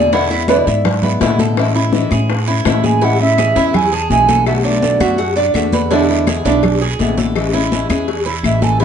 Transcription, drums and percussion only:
0.12 high bongo, high conga, long guiro
0.30 high conga
0.48 high bongo, high conga, short guiro, claves
0.67 high conga, short guiro
0.85 high bongo, high conga, low conga, long guiro, claves
1.03 high conga, low conga
1.20 high bongo, low bongo, high conga, short guiro
1.39 high conga, short guiro
1.57 high bongo, high conga, long guiro, claves
1.75 high bongo, high conga
1.93 high bongo, high conga, short guiro
2.11 high conga, short guiro, claves
2.29 high bongo, high conga, long guiro
2.48 high bongo, high conga
2.65 high bongo, low bongo, high conga, short guiro, claves
2.84 high bongo, high conga, short guiro
3.02 cowbell, high conga, long guiro
3.21 high conga
3.38 cowbell, high conga, short guiro, claves
3.56 cowbell, high conga, short guiro
3.74 cowbell, high conga, low conga, long guiro, claves
3.93 high conga
4.10 cowbell, high conga, short guiro
4.29 cowbell, high conga, short guiro
4.46 cowbell, high conga, long guiro, claves
4.65 high conga
4.82 cowbell, high conga, short guiro
5.01 cowbell, high conga, short guiro, claves
5.19 cowbell, high conga, long guiro
5.37 high conga
5.55 cowbell, high conga, short guiro, claves
5.73 cowbell, high conga, short guiro
5.91 cowbell, high conga, long guiro
6.10 high conga
6.27 cowbell, high conga, short guiro, claves
6.45 cowbell, high conga, short guiro
6.63 cowbell, high conga, low conga, long guiro, claves
6.82 high conga
6.99 cowbell, high conga, short guiro
7.18 cowbell, high conga, short guiro
7.36 cowbell, high conga, long guiro, claves
7.55 high conga
7.72 cowbell, high conga, short guiro
7.90 cowbell, high conga, short guiro, claves
8.08 cowbell, high conga, long guiro
8.26 high conga
8.44 cowbell, high conga, short guiro, claves
8.62 cowbell, high conga, short guiro
8.80 cowbell, long guiro

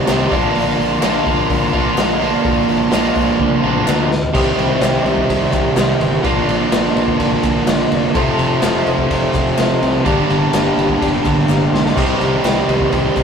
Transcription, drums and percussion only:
0.07 snare, clap, open hi-hat
0.31 kick, open hi-hat
0.55 open hi-hat
0.80 open hi-hat
1.03 snare, clap, open hi-hat
1.26 kick, open hi-hat
1.50 kick, open hi-hat
1.74 kick, open hi-hat
1.98 snare, clap, open hi-hat
2.21 open hi-hat
2.45 kick, open hi-hat
2.69 open hi-hat
2.92 snare, clap, open hi-hat
3.15 kick, open hi-hat
3.39 kick, high tom
3.63 mid tom
3.75 mid tom
3.87 snare, clap
4.11 snare
4.23 floor tom
4.35 kick, crash
4.59 ride
4.81 snare, clap, ride
5.06 ride
5.17 kick
5.30 kick, ride
5.53 kick, clap, ride
5.77 snare, clap, ride
6.01 ride
6.24 kick, ride
6.49 ride
6.72 snare, clap, ride
6.97 ride
7.08 kick
7.20 kick, ride
7.43 kick, clap, ride
7.67 snare, clap, ride
7.92 ride
8.15 kick, ride
8.39 ride
8.63 snare, clap, ride
8.87 ride
8.98 kick
9.11 kick, ride
9.34 kick, clap, ride
9.58 snare, clap, ride
9.83 ride
10.06 kick, ride
10.30 ride
10.54 snare, clap, ride
10.79 ride
10.90 kick
11.02 kick, ride
11.25 kick, clap, ride
11.49 snare, clap
11.74 snare
11.86 snare
11.97 kick, crash, splash
12.21 ride
12.45 snare, clap, ride
12.69 ride
12.81 kick
12.92 kick, ride
13.17 kick, clap, ride

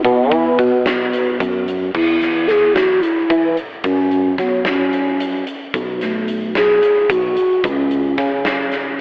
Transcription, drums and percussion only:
0.04 kick, closed hi-hat
0.31 kick, closed hi-hat
0.59 kick, closed hi-hat
0.86 snare, closed hi-hat
1.13 closed hi-hat
1.40 kick, closed hi-hat
1.68 closed hi-hat
1.95 kick, crash
2.22 snare, closed hi-hat
2.49 snare, closed hi-hat
2.76 snare, closed hi-hat
3.03 closed hi-hat
3.30 kick, closed hi-hat
3.57 closed hi-hat
3.84 kick, closed hi-hat
4.11 closed hi-hat
4.38 kick, snare, closed hi-hat
4.65 snare, closed hi-hat
4.93 closed hi-hat
5.20 closed hi-hat
5.47 closed hi-hat
5.74 kick, closed hi-hat
6.01 snare, closed hi-hat
6.28 closed hi-hat
6.55 snare, closed hi-hat
6.83 closed hi-hat
7.10 kick, closed hi-hat
7.37 closed hi-hat
7.64 kick, closed hi-hat
7.91 closed hi-hat
8.18 kick, snare, closed hi-hat
8.45 snare, closed hi-hat
8.72 snare, closed hi-hat

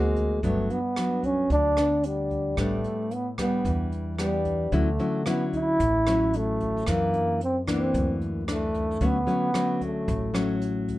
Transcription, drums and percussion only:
0.16 kick, closed hi-hat
0.43 kick, closed hi-hat
0.70 closed hi-hat
0.96 cross-stick, closed hi-hat
1.23 kick, closed hi-hat
1.50 kick, closed hi-hat
1.77 cross-stick, closed hi-hat
2.04 closed hi-hat
2.30 kick, closed hi-hat
2.57 kick, cross-stick, closed hi-hat
2.84 closed hi-hat
3.11 closed hi-hat
3.38 kick, cross-stick, closed hi-hat
3.65 kick, closed hi-hat
3.92 closed hi-hat
4.19 cross-stick, closed hi-hat
4.45 kick, closed hi-hat
4.72 kick, closed hi-hat
4.99 closed hi-hat
5.26 cross-stick, closed hi-hat
5.53 kick, closed hi-hat
5.80 kick, closed hi-hat
6.07 cross-stick, closed hi-hat
6.33 closed hi-hat
6.60 kick, closed hi-hat
6.87 kick, cross-stick, closed hi-hat
7.14 closed hi-hat
7.41 closed hi-hat
7.67 kick, cross-stick, closed hi-hat
7.94 kick, closed hi-hat
8.21 closed hi-hat
8.48 cross-stick, closed hi-hat
8.74 kick, closed hi-hat
9.01 kick, closed hi-hat
9.28 closed hi-hat
9.54 cross-stick, closed hi-hat
9.81 kick, closed hi-hat
10.08 kick, closed hi-hat
10.35 cross-stick, closed hi-hat
10.62 closed hi-hat
10.88 kick, closed hi-hat

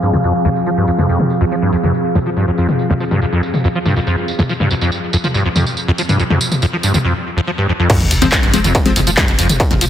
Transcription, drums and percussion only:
0.02 tambourine
0.13 mid tom, tambourine
0.24 tambourine
0.45 mid tom, tambourine
0.56 tambourine
0.66 tambourine
0.88 tambourine
0.98 mid tom, tambourine
1.09 tambourine
1.20 mid tom
1.30 tambourine
1.41 tambourine
1.51 tambourine
1.73 tambourine
1.83 mid tom, tambourine
1.94 tambourine
2.15 mid tom, tambourine
2.26 tambourine
2.36 tambourine
2.58 tambourine
2.69 mid tom, tambourine
2.79 tambourine
2.90 mid tom
3.00 tambourine
3.11 mid tom, tambourine
3.22 tambourine
3.43 tambourine
3.54 mid tom, tambourine
3.64 tambourine
3.85 mid tom, tambourine
3.96 tambourine
4.07 tambourine
4.28 tambourine
4.39 mid tom, tambourine
4.49 tambourine
4.60 mid tom
4.71 tambourine
4.81 tambourine
4.92 tambourine
5.13 tambourine
5.24 mid tom, tambourine
5.34 tambourine
5.56 mid tom, tambourine
5.66 tambourine
5.77 tambourine
5.98 tambourine
6.09 mid tom, tambourine
6.19 tambourine
6.30 mid tom
6.41 tambourine
6.52 mid tom, tambourine
6.62 tambourine
6.83 tambourine
6.94 mid tom, tambourine
7.90 kick, closed hi-hat, crash, ride, tambourine
8.01 closed hi-hat, mid tom
8.11 open hi-hat, tambourine
8.22 closed hi-hat, mid tom, tambourine
8.32 kick, clap, closed hi-hat, ride, tambourine
8.43 closed hi-hat
8.54 open hi-hat, tambourine
8.64 closed hi-hat, mid tom, tambourine
8.75 kick, closed hi-hat, ride, tambourine
8.86 closed hi-hat
8.96 open hi-hat, mid tom, tambourine
9.07 closed hi-hat, tambourine
9.17 kick, clap, closed hi-hat, ride, tambourine
9.28 closed hi-hat
9.39 open hi-hat, tambourine
9.49 closed hi-hat, mid tom, tambourine
9.60 kick, closed hi-hat, ride, tambourine
9.71 closed hi-hat, mid tom
9.81 open hi-hat, tambourine

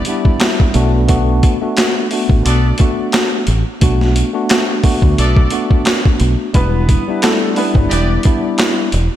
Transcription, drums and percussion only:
0.05 closed hi-hat
0.25 kick
0.40 snare, clap, closed hi-hat
0.60 kick
0.74 closed hi-hat
1.09 kick, closed hi-hat
1.43 kick, closed hi-hat
1.77 snare, clap, closed hi-hat
2.11 open hi-hat
2.29 kick
2.46 closed hi-hat
2.78 kick, closed hi-hat
3.12 snare, clap, closed hi-hat
3.47 closed hi-hat
3.81 kick, closed hi-hat
4.01 snare
4.16 closed hi-hat
4.49 snare, clap, closed hi-hat
4.83 kick, open hi-hat
5.02 kick
5.18 closed hi-hat
5.37 kick
5.50 closed hi-hat
5.71 kick
5.85 snare, clap, closed hi-hat
6.06 kick
6.20 closed hi-hat
6.54 kick, closed hi-hat
6.89 kick, closed hi-hat
7.22 snare, clap, closed hi-hat
7.56 open hi-hat
7.75 kick
7.91 closed hi-hat
8.23 kick, closed hi-hat
8.58 snare, clap, closed hi-hat
8.92 closed hi-hat

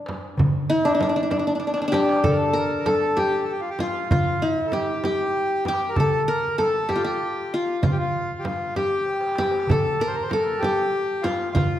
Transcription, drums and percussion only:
0.06 darbuka tek, frame drum
0.37 darbuka dum, frame drum
1.00 darbuka tek, frame drum
1.30 darbuka tek, frame drum
1.62 darbuka tek
1.70 darbuka ka
1.77 darbuka tek
1.86 darbuka ka
1.93 darbuka tek, frame drum
2.02 darbuka ka
2.09 darbuka tek
2.16 darbuka ka
2.24 frame drum, darbuka dum
2.86 darbuka tek, frame drum
3.17 darbuka tek, frame drum
3.79 darbuka tek, frame drum
4.11 frame drum, darbuka dum
4.72 darbuka tek, frame drum
5.03 darbuka tek, frame drum
5.65 darbuka tek, frame drum
5.96 frame drum, darbuka dum
6.59 darbuka tek, frame drum
6.89 darbuka tek, frame drum
7.83 darbuka dum, frame drum
8.44 darbuka tek, frame drum
8.75 darbuka tek, frame drum
9.06 darbuka tek
9.13 darbuka ka
9.21 darbuka tek
9.29 darbuka ka
9.35 darbuka tek, frame drum
9.43 darbuka ka
9.51 darbuka tek
9.60 darbuka ka
9.67 darbuka dum, frame drum
10.30 darbuka tek, frame drum
10.61 darbuka tek, frame drum
11.24 darbuka tek, frame drum
11.54 darbuka dum, frame drum

